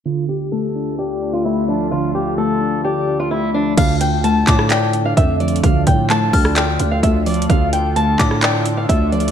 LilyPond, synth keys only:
\new Staff \with { instrumentName = "Synth keys" } { \time 4/4 \key d \minor \tempo 4 = 129 d4 a8 d'8 d''8 d'8 a8 f8 | d4 a8 d'8 d''8 d'8 a8 f8 | d4 a8 d'8 d''8 d'8 a8 f8 | d4 a8 d'8 d''8 d'8 a8 f8 |
d4 a8 d'8 d''8 d'8 a8 f8 | }